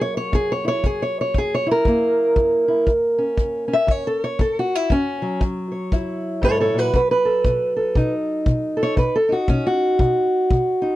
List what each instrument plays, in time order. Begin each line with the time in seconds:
Already playing: steel-string acoustic guitar F#2 F#3 A#3
0.01 steel-string acoustic guitar C#5
0.17 steel-string acoustic guitar C#5
0.32 steel-string acoustic guitar F#2 G#4, kick
0.52 steel-string acoustic guitar C#5
0.65 steel-string acoustic guitar E4 C#5
0.84 steel-string acoustic guitar F#2 G#4, kick
1.02 steel-string acoustic guitar C#5
1.21 steel-string acoustic guitar C#5
1.34 steel-string acoustic guitar F#2 G#4, kick
1.55 steel-string acoustic guitar C#5
1.67 steel-string acoustic guitar E4
1.71 steel-string acoustic guitar A#4
1.85 steel-string acoustic guitar F#2 A#3, kick
2.36 steel-string acoustic guitar F#2, kick
2.68 steel-string acoustic guitar E4
2.86 steel-string acoustic guitar F#2, kick
3.18 steel-string acoustic guitar C#4
3.37 steel-string acoustic guitar F#2, kick
3.68 steel-string acoustic guitar C#4
3.73 steel-string acoustic guitar E5
3.87 steel-string acoustic guitar F#2 C#5, kick
4.07 steel-string acoustic guitar A4
4.24 steel-string acoustic guitar C#5
4.39 steel-string acoustic guitar F#2 A4, kick
4.59 steel-string acoustic guitar F#4
4.75 steel-string acoustic guitar E4
4.90 steel-string acoustic guitar F#2 C#4, kick
5.22 steel-string acoustic guitar F#3
5.40 steel-string acoustic guitar F#2, kick
5.72 steel-string acoustic guitar C#5
5.92 steel-string acoustic guitar F#2 E4, kick
6.42 steel-string acoustic guitar G#2 A4 C#5, kick
6.60 steel-string acoustic guitar A4 C#5
6.74 steel-string acoustic guitar A#2
6.78 steel-string acoustic guitar F#4 B4
6.93 steel-string acoustic guitar B2 F#4 B4, kick
7.11 steel-string acoustic guitar B4
7.25 steel-string acoustic guitar A4
7.45 steel-string acoustic guitar B2, kick
7.76 steel-string acoustic guitar A4
7.95 steel-string acoustic guitar B2 D#4, kick
8.46 steel-string acoustic guitar B2, kick
8.77 steel-string acoustic guitar A4
8.83 steel-string acoustic guitar C#5
8.96 steel-string acoustic guitar B2 B4, kick
9.16 steel-string acoustic guitar A4
9.29 steel-string acoustic guitar D#4 F#4
9.48 steel-string acoustic guitar B2 C#4, kick
9.67 steel-string acoustic guitar F#4
9.99 steel-string acoustic guitar B2, kick
10.50 steel-string acoustic guitar B2, kick
10.82 steel-string acoustic guitar D#4